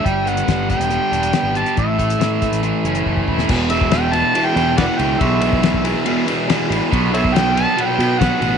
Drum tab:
CC |----------------|----------------|x---------------|----------------|
RD |----------------|----------------|--x-x-x-x-x-x-x-|x-x-x-x-x-x-x-x-|
HH |x-xxx-xxx-xxx-xx|x-xxx-xxx-xx----|----------------|----------------|
SD |----o--o----o---|----o----------o|----o-----o-o---|----o-------o---|
BD |o---o-o---------|o-o---o-----ooo-|o--o--------o---|o--o-o----------|

CC |----------------|
RD |x-x-x-x-x-x-x-x-|
HH |----------------|
SD |----o-----o-o---|
BD |o--o--------o---|